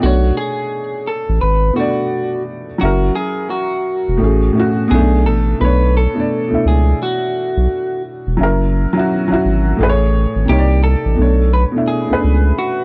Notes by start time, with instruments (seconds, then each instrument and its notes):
0.00 sub bass B1, upright piano B2 A3 D4, clean electric guitar F#4
0.06 upright piano C#5
0.37 clean electric guitar G#4
1.07 clean electric guitar A4
1.29 sub bass A1
1.41 sub bass G#1, clean electric guitar B4
1.73 upright piano B2 A3, clean electric guitar F#4
1.78 upright piano D4 D5
2.78 upright piano F#3 C#4, clean electric guitar F#4
2.82 sub bass F#1, upright piano E4 A#4
3.15 clean electric guitar G#4
3.50 clean electric guitar F#4
4.08 sub bass E1
4.17 upright piano A2 A3
4.22 sub bass A1, upright piano C#4 G#4
4.53 upright piano A2 A3
4.57 upright piano C#4 F#4
4.88 sub bass B1, upright piano B2 B3, clean electric guitar G#4
4.92 upright piano A3 C#4
4.98 upright piano D4
5.26 sub bass A1, clean electric guitar A4
5.58 sub bass B1, upright piano B2 A3, clean electric guitar B4
5.63 upright piano D4 C#5
5.97 clean electric guitar A4
6.14 upright piano B2 A3 D4
6.20 upright piano D5
6.48 sub bass C#2, upright piano B2 A3
6.53 upright piano D4 E4
6.65 sub bass C#2, clean electric guitar G#4
7.03 clean electric guitar F#4
7.57 sub bass B1
8.27 sub bass E1
8.37 sub bass F#1, upright piano F#3 C#4 E4
8.43 upright piano A#4
8.93 upright piano F#3 C#4
8.97 upright piano E4 F#4
9.28 sub bass G#1, upright piano F#3 C#4
9.32 upright piano E4 F#4
9.45 sub bass G#1
9.77 sub bass A1, upright piano A2 A3 G#4
9.83 upright piano B4
9.89 upright piano C#5
10.36 sub bass G#1
10.45 sub bass C2, upright piano C3 A#3, clean electric guitar G4
10.50 upright piano D#4 C#5
10.59 upright piano D5
10.84 clean electric guitar A4
11.05 sub bass A1
11.15 sub bass B1, upright piano B2 A3
11.20 upright piano D4 C#5
11.53 clean electric guitar B4
11.72 upright piano B2 A3
11.76 upright piano D4 E4
11.88 clean electric guitar G#4
12.06 upright piano B2 A3
12.10 sub bass C#2, upright piano C#4 B4
12.17 upright piano D4
12.24 sub bass C#2
12.59 clean electric guitar F#4